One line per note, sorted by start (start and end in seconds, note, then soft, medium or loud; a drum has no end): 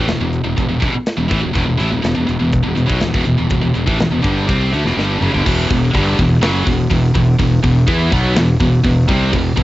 0.08 0.19 E1 medium
0.08 0.20 E2 medium
0.08 0.20 B2 medium
0.08 snare loud
0.08 closed hi-hat medium
0.20 0.43 E1 medium
0.20 0.41 E2 medium
0.20 0.41 B2 medium
0.33 closed hi-hat medium
0.44 0.56 E1 medium
0.44 0.55 E2 medium
0.44 0.56 B2 medium
0.57 0.69 E1 medium
0.57 0.68 E2 medium
0.57 0.67 B2 medium
0.57 kick medium
0.57 closed hi-hat medium
0.69 0.81 E1 medium
0.69 0.79 E2 medium
0.69 0.80 B2 medium
0.80 0.93 E1 medium
0.80 0.92 E2 loud
0.80 0.93 B2 loud
0.80 kick loud
0.80 closed hi-hat medium
0.93 muted distorted electric guitar stroke medium
0.93 muted fingered electric bass stroke soft
1.06 snare loud
1.06 closed hi-hat medium
1.17 1.30 E1 medium
1.17 1.30 E2 medium
1.17 1.28 B2 medium
1.28 1.42 A1 medium
1.28 1.41 A2 medium
1.28 1.42 E3 loud
1.28 kick loud
1.28 closed hi-hat medium
1.41 1.54 E1 medium
1.41 1.52 E2 medium
1.41 1.53 B2 medium
1.53 1.67 E1 medium
1.53 1.64 E2 medium
1.53 1.64 B2 medium
1.53 kick medium
1.53 closed hi-hat medium
1.65 1.80 E1 medium
1.65 1.79 E2 medium
1.65 1.77 B2 medium
1.77 1.91 A1 loud
1.77 1.90 A2 medium
1.77 1.90 E3 loud
1.77 closed hi-hat medium
1.90 2.04 E1 medium
1.90 2.01 E2 medium
1.90 2.01 B2 medium
2.02 2.16 E1 medium
2.02 2.13 E2 medium
2.02 2.14 B2 medium
2.02 snare loud
2.02 closed hi-hat medium
2.15 2.29 E1 medium
2.15 2.25 E2 medium
2.15 2.26 B2 medium
2.26 2.40 E1 medium
2.26 2.38 E2 medium
2.26 2.39 B2 medium
2.26 closed hi-hat medium
2.39 2.64 E1 medium
2.39 2.60 E2 medium
2.39 2.60 B2 medium
2.53 kick loud
2.53 closed hi-hat medium
2.64 2.77 E1 medium
2.64 2.75 E2 medium
2.64 2.75 B2 medium
2.76 2.88 E1 medium
2.76 2.89 E2 medium
2.76 2.85 B2 medium
2.76 closed hi-hat medium
2.87 3.00 B1 medium
2.87 3.00 B2 medium
2.87 3.00 F#3 medium
2.87 kick loud
3.00 3.13 E1 medium
3.00 3.13 E2 medium
3.00 3.14 B2 medium
3.00 snare loud
3.00 closed hi-hat medium
3.14 3.26 E1 medium
3.14 3.24 E2 medium
3.14 3.24 B2 loud
3.14 kick medium
3.25 3.38 E1 medium
3.25 3.37 E2 medium
3.25 3.37 B2 medium
3.25 closed hi-hat medium
3.38 3.50 E1 medium
3.38 3.49 E2 medium
3.38 3.50 B2 medium
3.50 3.62 E1 medium
3.50 3.60 E2 medium
3.50 3.61 B2 medium
3.50 kick medium
3.50 closed hi-hat medium
3.61 3.75 E1 medium
3.61 3.73 E2 medium
3.61 3.73 B2 medium
3.74 3.87 E1 medium
3.74 3.87 E2 medium
3.74 3.86 B2 medium
3.74 closed hi-hat medium
3.86 3.99 A1 medium
3.86 3.98 A2 medium
3.86 3.98 E3 medium
3.86 kick loud
3.99 4.11 E1 medium
3.99 4.10 E2 medium
3.99 4.10 B2 medium
3.99 snare loud
3.99 closed hi-hat medium
4.11 4.23 E1 medium
4.11 4.21 E2 medium
4.11 4.22 B2 medium
4.22 4.47 G1 loud
4.22 4.46 G2 medium
4.22 4.46 D3 medium
4.22 4.46 G3 medium
4.22 kick loud
4.22 closed hi-hat medium
4.47 4.71 C2 medium
4.47 4.71 C3 medium
4.47 4.71 G3 medium
4.47 4.72 C4 loud
4.47 kick loud
4.47 closed hi-hat medium
4.72 4.84 D2 medium
4.72 4.84 D3 medium
4.72 4.84 A3 loud
4.72 closed hi-hat medium
4.84 4.96 E1 medium
4.84 4.96 E2 medium
4.84 4.96 B2 loud
4.84 snare soft
4.96 5.20 G1 medium
4.96 5.20 G2 medium
4.96 5.21 D3 loud
4.96 5.21 G3 medium
4.96 snare medium
5.21 5.32 F#1 medium
5.21 5.33 F#2 medium
5.21 5.33 C#3 loud
5.21 mid tom medium
5.33 5.44 G1 medium
5.33 5.44 G2 medium
5.33 5.44 D3 loud
5.33 floor tom medium
5.44 5.69 E1 loud
5.44 5.67 E2 loud
5.44 5.68 B2 medium
5.44 5.69 E3 loud
5.44 kick loud
5.44 crash loud
5.68 5.93 E1 medium
5.68 5.88 E2 medium
5.68 5.89 B2 medium
5.68 kick loud
5.68 open hi-hat medium
5.94 6.16 G1 loud
5.94 6.17 G2 loud
5.94 6.18 D3 loud
5.94 6.18 G3 loud
5.94 kick loud
5.94 open hi-hat loud
6.19 6.41 E1 medium
6.19 6.38 E2 medium
6.19 6.38 B2 medium
6.19 kick loud
6.19 open hi-hat medium
6.41 6.64 F#1 loud
6.41 6.65 F#2 medium
6.41 6.66 C#3 loud
6.41 6.66 F#3 loud
6.41 snare loud
6.41 open hi-hat medium
6.67 6.89 E1 medium
6.67 6.86 E2 medium
6.67 6.86 B2 medium
6.67 kick loud
6.67 open hi-hat medium
6.90 7.13 E1 medium
6.90 7.10 E2 medium
6.90 7.10 B2 medium
6.90 kick medium
6.90 open hi-hat medium
7.14 7.38 E1 medium
7.14 7.34 E2 medium
7.14 7.34 B2 medium
7.14 kick medium
7.14 open hi-hat medium
7.39 7.62 E1 medium
7.39 7.58 E2 medium
7.39 7.59 B2 medium
7.39 kick medium
7.39 open hi-hat medium
7.63 7.86 E1 medium
7.63 7.83 E2 medium
7.63 7.83 B2 medium
7.63 kick loud
7.63 open hi-hat medium
7.87 8.10 E2 loud
7.87 8.11 E3 loud
7.87 8.11 B3 loud
7.87 8.11 E4 loud
7.87 kick loud
7.87 open hi-hat medium
8.12 8.34 B1 loud
8.12 8.35 B2 medium
8.12 8.35 F#3 loud
8.12 8.36 B3 loud
8.12 kick loud
8.12 open hi-hat medium
8.36 8.58 E1 medium
8.36 8.55 E2 medium
8.36 8.55 B2 medium
8.36 snare loud
8.36 open hi-hat medium
8.60 8.83 E1 medium
8.60 8.79 E2 medium
8.60 8.79 B2 medium
8.60 kick loud
8.60 open hi-hat medium
8.83 9.07 E1 medium
8.83 9.03 E2 medium
8.83 9.03 B2 medium
8.83 kick loud
8.83 open hi-hat medium
9.08 9.31 C2 loud
9.08 9.32 C3 loud
9.08 9.32 G3 loud
9.08 9.32 C4 loud
9.08 kick loud
9.08 open hi-hat medium
9.32 9.55 E1 medium
9.32 9.52 E2 medium
9.32 9.52 B2 medium
9.32 kick medium
9.32 crash loud
9.56 9.63 E1 medium
9.56 9.63 E2 medium
9.56 9.63 B2 medium
9.56 kick medium
9.56 open hi-hat medium